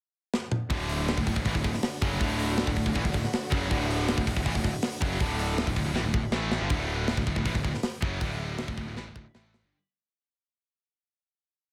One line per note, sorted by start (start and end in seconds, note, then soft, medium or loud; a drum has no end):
0.34 snare medium
0.52 mid tom medium
0.69 1.14 D1 medium
0.69 1.17 D2 medium
0.69 1.17 A2 loud
0.69 6.65 D3 medium
0.69 1.18 D3 loud
0.69 6.65 A3 medium
0.69 6.65 D4 medium
0.69 6.65 F#4 medium
0.69 kick loud
0.69 open hi-hat medium
0.89 open hi-hat medium
1.08 snare loud
1.08 open hi-hat medium
1.17 1.26 D1 medium
1.17 1.27 D2 medium
1.17 1.27 A2 medium
1.17 kick medium
1.26 1.35 D1 medium
1.26 1.36 D2 medium
1.26 1.36 A2 medium
1.26 kick medium
1.26 open hi-hat medium
1.36 1.45 D1 medium
1.36 1.46 D2 medium
1.36 1.46 A2 medium
1.36 kick medium
1.45 1.54 A1 loud
1.45 1.55 A2 medium
1.45 1.56 E3 loud
1.45 kick loud
1.45 open hi-hat medium
1.55 1.64 D1 medium
1.55 1.63 D2 medium
1.55 1.63 A2 medium
1.55 kick medium
1.64 1.73 D1 medium
1.64 1.74 D2 medium
1.64 1.74 A2 medium
1.64 kick medium
1.64 open hi-hat medium
1.74 snare soft
1.83 snare loud
1.83 open hi-hat medium
2.02 2.20 F#1 loud
2.02 2.20 F#2 medium
2.02 2.21 C#3 loud
2.02 2.21 F#3 loud
2.02 kick loud
2.02 open hi-hat medium
2.20 2.64 D1 loud
2.20 2.66 D2 medium
2.20 2.67 A2 loud
2.20 2.68 D3 loud
2.20 kick loud
2.20 open hi-hat medium
2.39 open hi-hat medium
2.58 snare loud
2.58 open hi-hat medium
2.67 2.76 D1 medium
2.67 2.75 D2 medium
2.67 2.76 A2 medium
2.67 kick medium
2.76 2.85 D1 medium
2.76 2.85 D2 medium
2.76 2.85 A2 medium
2.76 kick medium
2.76 open hi-hat medium
2.86 2.94 D1 medium
2.86 2.93 D2 medium
2.86 2.93 A2 medium
2.86 kick medium
2.94 3.04 A1 loud
2.94 3.03 A2 medium
2.94 3.04 E3 loud
2.94 kick loud
2.94 open hi-hat medium
3.04 3.14 D1 medium
3.04 3.11 D2 medium
3.04 3.12 A2 medium
3.04 kick medium
3.12 3.23 D1 medium
3.12 3.23 D2 medium
3.12 3.23 A2 medium
3.12 kick medium
3.12 open hi-hat medium
3.24 snare soft
3.33 snare loud
3.33 open hi-hat medium
3.50 3.69 F#1 loud
3.50 3.69 F#2 medium
3.50 3.70 C#3 loud
3.50 3.70 F#3 loud
3.50 kick loud
3.50 open hi-hat medium
3.69 4.14 D1 loud
3.69 4.15 D2 medium
3.69 4.15 A2 loud
3.69 4.17 D3 loud
3.69 kick loud
3.69 open hi-hat medium
3.90 open hi-hat medium
4.08 snare loud
4.08 open hi-hat medium
4.16 4.26 D1 medium
4.16 4.24 D2 medium
4.16 4.25 A2 medium
4.16 kick medium
4.25 4.36 D1 medium
4.25 4.35 D2 medium
4.25 4.35 A2 medium
4.25 kick medium
4.25 open hi-hat medium
4.36 4.45 D1 medium
4.36 4.43 D2 medium
4.36 4.43 A2 medium
4.36 kick medium
4.44 4.54 A1 medium
4.44 4.53 A2 loud
4.44 4.54 E3 loud
4.44 kick loud
4.44 open hi-hat medium
4.53 4.64 D1 medium
4.53 4.63 D2 medium
4.53 4.63 A2 medium
4.53 kick medium
4.64 4.73 D1 medium
4.64 4.74 D2 medium
4.64 4.74 A2 medium
4.64 kick medium
4.64 open hi-hat medium
4.82 snare loud
4.82 open hi-hat loud
5.02 5.19 F#1 medium
5.02 5.20 F#2 medium
5.02 5.20 C#3 loud
5.02 5.20 F#3 loud
5.02 kick loud
5.20 5.64 D1 loud
5.20 5.66 D2 medium
5.20 5.67 A2 medium
5.20 5.67 D3 loud
5.20 kick loud
5.20 open hi-hat medium
5.39 open hi-hat medium
5.58 snare loud
5.58 open hi-hat medium
5.66 5.75 D1 medium
5.66 5.76 D2 medium
5.66 5.77 A2 medium
5.66 kick medium
5.76 5.85 D1 medium
5.76 5.83 D2 medium
5.76 5.84 A2 medium
5.76 kick medium
5.76 open hi-hat medium
5.85 5.93 D1 medium
5.85 5.93 D2 medium
5.85 5.92 A2 medium
5.94 6.03 A1 loud
5.94 6.03 A2 medium
5.94 6.04 E3 loud
5.94 snare medium
6.03 6.13 D1 medium
6.03 6.12 D2 medium
6.03 6.13 A2 medium
6.14 6.22 D1 medium
6.14 6.23 D2 medium
6.14 6.23 A2 medium
6.14 kick loud
6.31 6.58 A1 medium
6.31 6.59 A2 loud
6.31 6.60 E3 loud
6.31 6.61 A3 loud
6.31 snare medium
6.52 snare medium
6.60 6.69 G1 medium
6.60 6.69 G2 loud
6.60 6.69 D3 loud
6.69 7.14 D1 medium
6.69 7.16 D2 medium
6.69 7.16 A2 loud
6.69 7.17 D3 loud
6.69 kick loud
6.69 open hi-hat medium
7.08 snare loud
7.08 open hi-hat medium
7.17 7.26 D1 medium
7.17 7.25 D2 medium
7.17 7.25 A2 medium
7.17 kick medium
7.26 7.35 D1 medium
7.26 7.34 D2 medium
7.26 7.34 A2 medium
7.26 kick medium
7.35 7.44 D1 medium
7.35 7.45 D2 medium
7.35 7.44 A2 medium
7.35 kick medium
7.45 7.54 A1 medium
7.45 7.53 A2 medium
7.45 7.54 E3 loud
7.45 kick medium
7.45 open hi-hat medium
7.54 7.63 D1 medium
7.54 7.62 D2 medium
7.54 7.62 A2 medium
7.54 kick medium
7.63 7.73 D1 medium
7.63 7.73 D2 medium
7.63 7.73 A2 medium
7.63 kick medium
7.74 snare soft
7.83 snare loud
7.83 open hi-hat medium
8.01 8.19 F#1 medium
8.01 8.20 F#2 medium
8.01 8.20 C#3 loud
8.01 8.21 F#3 medium
8.01 kick loud
8.21 8.65 D1 medium
8.21 8.68 D2 medium
8.21 8.68 A2 medium
8.21 8.68 D3 loud
8.21 kick loud
8.21 open hi-hat medium
8.58 snare loud
8.58 open hi-hat medium
8.68 8.77 D1 medium
8.68 8.77 D2 medium
8.68 8.78 A2 medium
8.68 kick medium
8.77 8.86 D1 medium
8.77 8.87 D2 medium
8.77 8.88 A2 medium
8.77 kick medium
8.87 8.96 D1 medium
8.87 8.97 D2 medium
8.87 8.96 A2 medium
8.97 9.06 A1 medium
8.97 9.06 A2 medium
8.97 9.06 E3 medium
8.97 snare medium
9.07 9.15 D1 medium
9.07 9.15 D2 medium
9.07 9.16 A2 medium
9.15 9.24 D1 medium
9.15 9.25 D2 medium
9.15 9.26 A2 medium
9.15 kick medium
9.35 9.61 A1 medium
9.35 9.63 A2 medium
9.35 9.63 E3 medium
9.35 9.64 A3 medium
9.35 snare medium
9.54 snare medium
9.63 9.72 G1 medium
9.63 9.73 G2 medium
9.63 9.73 D3 medium